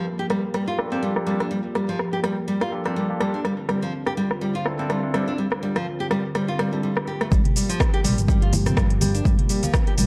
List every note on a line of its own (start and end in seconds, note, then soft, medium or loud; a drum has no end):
0.00 3.41 F3 medium
0.00 3.41 A#3 medium
0.00 3.41 G4 medium
0.19 0.25 G4 medium
0.30 0.42 G3 medium
0.30 cross-stick medium
0.30 shaker medium
0.44 shaker soft
0.54 0.66 G3 medium
0.54 cross-stick medium
0.68 0.78 F4 medium
0.78 0.90 A#3 medium
0.78 0.90 D4 medium
0.78 0.90 F4 medium
0.78 0.90 G4 medium
0.78 0.90 A4 medium
0.78 cross-stick medium
0.78 shaker medium
0.92 1.13 A#3 medium
0.92 1.01 C4 medium
0.92 1.13 D4 medium
0.92 1.13 F4 medium
0.92 1.13 G4 medium
0.92 1.13 A4 loud
1.03 1.15 G3 medium
1.16 1.25 A#3 medium
1.16 1.25 D4 medium
1.16 1.25 F4 medium
1.16 1.25 G4 medium
1.16 1.25 A4 medium
1.16 cross-stick medium
1.27 1.39 G3 medium
1.27 1.46 A#3 medium
1.27 1.46 D4 medium
1.27 1.46 F4 medium
1.27 1.46 G4 medium
1.27 1.46 A4 medium
1.27 shaker medium
1.40 1.50 D4 medium
1.40 cross-stick medium
1.51 1.58 G3 medium
1.75 1.87 G3 medium
1.75 cross-stick medium
1.75 shaker medium
1.89 1.98 F3 medium
1.99 cross-stick medium
2.13 2.19 G4 medium
2.24 2.36 G3 loud
2.24 cross-stick medium
2.24 shaker medium
2.38 shaker soft
2.48 2.60 G3 medium
2.61 2.71 F4 medium
2.61 cross-stick medium
2.72 2.84 A#3 medium
2.72 2.84 D4 medium
2.72 2.84 F4 medium
2.72 2.84 G4 medium
2.72 2.84 A4 loud
2.72 shaker medium
2.85 3.06 A#3 medium
2.85 2.95 C4 medium
2.85 3.06 D4 medium
2.85 3.06 F4 medium
2.85 3.06 G4 medium
2.85 3.06 A4 loud
2.85 cross-stick medium
2.85 shaker soft
2.96 3.09 G3 medium
3.10 3.19 A#3 medium
3.10 3.19 D4 medium
3.10 3.19 F4 medium
3.10 3.19 G4 medium
3.10 3.19 A4 medium
3.20 3.33 G3 medium
3.20 3.39 A#3 medium
3.20 3.39 D4 medium
3.20 3.39 F4 medium
3.20 3.39 G4 medium
3.20 3.39 A4 loud
3.20 cross-stick medium
3.20 shaker medium
3.34 3.44 D4 medium
3.34 shaker soft
3.45 7.28 D3 medium
3.45 3.52 G3 medium
3.45 7.28 C4 medium
3.45 7.28 F4 medium
3.45 cross-stick medium
3.69 3.81 G3 medium
3.69 cross-stick medium
3.69 shaker medium
3.82 3.92 F3 medium
3.94 shaker soft
4.06 4.12 G4 medium
4.06 cross-stick medium
4.17 4.29 G3 medium
4.17 shaker medium
4.31 cross-stick medium
4.31 shaker soft
4.41 4.54 G3 medium
4.55 4.65 F4 medium
4.65 4.77 C4 medium
4.65 4.77 D4 medium
4.65 4.77 E4 medium
4.65 4.77 F4 medium
4.65 4.77 A4 loud
4.65 cross-stick medium
4.65 shaker medium
4.79 5.00 C4 medium
4.79 4.89 C4 medium
4.79 5.00 D4 medium
4.79 5.00 E4 medium
4.79 5.00 F4 medium
4.79 5.00 A4 loud
4.79 shaker soft
4.90 5.03 G3 medium
4.90 cross-stick medium
4.90 shaker soft
5.03 5.12 C4 medium
5.03 5.12 D4 medium
5.03 5.12 E4 medium
5.03 5.12 F4 medium
5.03 5.12 A4 loud
5.14 5.26 G3 medium
5.14 5.33 C4 medium
5.14 5.33 D4 medium
5.14 5.33 E4 medium
5.14 5.33 F4 medium
5.14 5.33 A4 loud
5.14 cross-stick medium
5.14 shaker medium
5.28 5.37 D4 medium
5.28 shaker soft
5.38 5.45 G3 medium
5.38 shaker soft
5.52 cross-stick medium
5.63 5.75 G3 medium
5.63 shaker medium
5.76 5.85 F3 medium
5.76 cross-stick medium
5.76 shaker soft
5.87 shaker soft
6.00 6.06 G4 medium
6.11 6.23 G3 medium
6.11 cross-stick medium
6.11 shaker medium
6.25 shaker soft
6.35 6.47 G3 loud
6.35 cross-stick medium
6.35 shaker soft
6.48 6.59 F4 medium
6.59 6.71 G3 loud
6.59 cross-stick medium
6.59 shaker medium
6.73 6.82 G3 medium
6.73 6.90 C4 medium
6.73 6.90 D4 medium
6.73 6.90 E4 medium
6.73 6.90 F4 medium
6.73 6.90 A4 medium
6.73 shaker soft
6.83 6.95 G3 medium
6.83 shaker soft
6.97 cross-stick medium
7.07 7.20 G4 medium
7.07 shaker medium
7.21 7.27 A3 medium
7.21 cross-stick medium
7.21 shaker medium
7.32 7.42 G1 loud
7.32 10.06 F3 medium
7.32 7.39 G3 medium
7.32 10.06 A#3 medium
7.32 10.06 G4 medium
7.32 kick loud
7.32 high conga medium
7.32 shaker soft
7.45 closed hi-hat soft
7.45 mid tom medium
7.56 7.68 G3 medium
7.56 open hi-hat medium
7.56 shaker medium
7.69 7.79 F3 medium
7.69 closed hi-hat medium
7.69 shaker medium
7.80 kick loud
7.80 cross-stick loud
7.80 shaker soft
7.94 7.99 G4 medium
7.94 closed hi-hat soft
8.04 8.19 A#1 medium
8.04 8.16 G3 loud
8.04 open hi-hat loud
8.04 mid tom medium
8.04 high conga medium
8.04 shaker medium
8.18 8.73 G1 loud
8.18 closed hi-hat medium
8.18 shaker medium
8.28 8.41 G3 loud
8.28 kick loud
8.28 high conga medium
8.28 shaker soft
8.42 8.52 F4 medium
8.42 closed hi-hat soft
8.53 open hi-hat medium
8.53 high conga loud
8.53 low conga loud
8.53 shaker medium
8.66 8.76 C4 medium
8.66 cross-stick medium
8.66 closed hi-hat medium
8.66 mid tom medium
8.66 low conga loud
8.66 shaker medium
8.77 9.22 G1 loud
8.77 8.90 G3 medium
8.77 kick loud
8.77 cross-stick loud
8.77 shaker soft
8.90 closed hi-hat soft
9.01 9.13 G3 loud
9.01 open hi-hat medium
9.01 low conga loud
9.01 shaker loud
9.15 9.24 D4 medium
9.15 closed hi-hat medium
9.15 shaker medium
9.25 9.36 G1 loud
9.25 9.33 G3 medium
9.25 kick loud
9.25 high conga medium
9.25 shaker soft
9.39 closed hi-hat soft
9.39 mid tom medium
9.49 9.62 G3 medium
9.49 open hi-hat medium
9.49 shaker loud
9.63 9.73 F3 medium
9.63 closed hi-hat medium
9.63 low conga medium
9.63 shaker medium
9.74 kick loud
9.74 cross-stick loud
9.74 shaker soft
9.87 9.93 G4 medium
9.87 closed hi-hat soft
9.98 10.06 A#1 medium
9.98 10.06 G3 loud
9.98 open hi-hat loud
9.98 mid tom medium
9.98 high conga medium
9.98 shaker loud